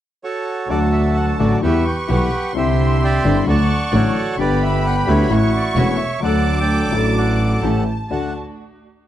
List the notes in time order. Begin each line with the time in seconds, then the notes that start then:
0.24 F#4 A4 C#5
0.68 D2 D3 F#3 A3 D4 F#4 A4 D5 A5
0.72 F#4
0.92 E5
1.16 F#5
1.39 A1 A2 D3 F#3 A3 D4 F#4 D5
1.62 E2 E3 G3 B3 E4 G4 B4 E5 C#6
1.87 G5
2.08 B1 B2 E3 G3 B3 E4 G4 B4 F#5
2.53 C2 C3 D3 G3 C4 D4 E4 C6
2.57 E4 G4 E5
3.04 D5 E5 G5
3.23 G1 G2 D3 G3 C4 D4 E4
3.41 B5
3.46 D2 D3 F#3 A3 D4 F#4 D5 F#5 A5 C#6
3.92 A1 A2 D3 F#3 A3 D4 F#4 A4 C#5
4.32 C#6
4.37 G1 G2 D3 G3 B3 D4 G4 B4 D5 B5
4.63 E5
4.86 F#5
5.06 D2 D3 G3 B3 D4 E4 F#4 G4 C#5
5.30 A1 A2 E3 A3 C#4 F#4 C#6
5.56 D5
5.75 E1 E2 E3 A3 C#4 F#4 C#5 E5
6.20 D2 D3 F#3 A3 D4 A4 D5 D6
6.25 A4 F#5
6.61 D5 G5
6.91 A1 A2 F#3 A3 D4 F#4 A4
6.96 A5
7.17 A4 D5 F#5
7.62 A1 A2 E3 A3 C#4 G4 A5
8.10 D2 A3 D4 F#4 F#5 A5